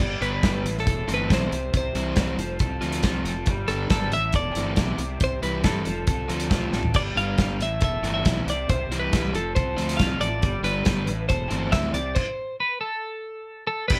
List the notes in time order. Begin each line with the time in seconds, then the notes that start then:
Already playing: D5
0.00 G1 G3
0.21 G1 D3 G3 B3 D4 B4, closed hi-hat
0.43 G1 D3 G3 B3 D4, kick, snare, closed hi-hat
0.64 A1 A2, closed hi-hat
0.78 A4, snare
0.87 E1 A4, kick, closed hi-hat
1.08 G1 E3 A3 C4 E4, closed hi-hat
1.14 B4
1.29 B1 E3 A3 C4 E4, kick, snare, closed hi-hat
1.34 C5
1.51 C2 C3, closed hi-hat
1.72 C2 C3, kick, closed hi-hat
1.77 C5
1.95 C2 E3 G3 C4 E4, closed hi-hat
2.16 C2 E3 G3 C4 E4, kick, snare, closed hi-hat
2.37 F1 F3, closed hi-hat
2.59 C2 A4, kick, closed hi-hat
2.81 D2 F3 A3 C4 F4, closed hi-hat
2.92 closed hi-hat
3.03 C2 F3 A3 C4 F4, kick, snare, closed hi-hat
3.25 F1 A4, closed hi-hat
3.46 G1 G3, kick, closed hi-hat
3.68 G1 D3 G3 B3 D4 A4, closed hi-hat
3.90 G#1 D3 G3 B3 D4 A4, kick, snare, closed hi-hat
4.11 A1 A2 E5, closed hi-hat
4.33 E1 A4 D5, kick, closed hi-hat
4.55 G1 E3 A3 C4 E4, closed hi-hat
4.76 B1 E3 A3 C4 E4, kick, snare, closed hi-hat
4.98 C2 C3, closed hi-hat
5.20 C2 C3 C5, kick, closed hi-hat
5.42 C2 E3 G3 C4 E4 B4, closed hi-hat
5.64 G2 E3 G3 C4 E4 A4, kick, snare, closed hi-hat
5.85 F1 F3, closed hi-hat
6.07 C2 A4, kick, closed hi-hat
6.28 D2 F3 A3 C4 F4, closed hi-hat
6.40 closed hi-hat
6.50 C2 F3 A3 C4 F4, kick, snare, closed hi-hat
6.73 A1 A4, snare
6.83 floor tom
6.94 G1 G3 D5, kick, closed hi-hat, crash
7.16 G1 D3 G3 B3 D4 F5, closed hi-hat
7.38 G1 D3 G3 B3 D4, kick, snare, closed hi-hat
7.60 A1 A2 E5, closed hi-hat
7.81 E1 A4 E5, kick, closed hi-hat
8.02 G1 E3 A3 C4 E4, closed hi-hat
8.14 E5
8.25 B1 E3 A3 C4 E4, kick, snare, closed hi-hat
8.47 C2 C3 D5, closed hi-hat
8.69 C2 C3 C5, kick, closed hi-hat
8.88 C2 E3 C4 E4, closed hi-hat
8.93 G3
9.00 B4
9.11 C2 E3 G3 C4 E4, kick, snare, closed hi-hat
9.33 F1 F3 A4, closed hi-hat
9.55 C2 A4 C5, kick, closed hi-hat
9.76 D2 F3 A3 C4 F4, closed hi-hat
9.89 closed hi-hat
9.97 C2 F3 A3 C4 F4 F5, kick, snare, closed hi-hat
10.20 A1 A4 D5, closed hi-hat
10.42 G1 G3, kick, closed hi-hat
10.62 G1 D3 G3 B3 D4 B4, closed hi-hat
10.85 G1 D3 G3 B3 D4, kick, snare, closed hi-hat
11.06 A1 A2, closed hi-hat
11.29 E1 A4 C5, kick, closed hi-hat
11.50 G1 E3 A3 C4 E4, closed hi-hat
11.72 D2 E3 A3 C4 E4 E5, kick, snare, closed hi-hat
11.93 C2 C3 D5, closed hi-hat
12.15 C5, kick, crash
12.60 B4
12.81 A4
13.67 A4
13.88 G1 G2 D3 G3 B3 D4 G4 B4, kick, crash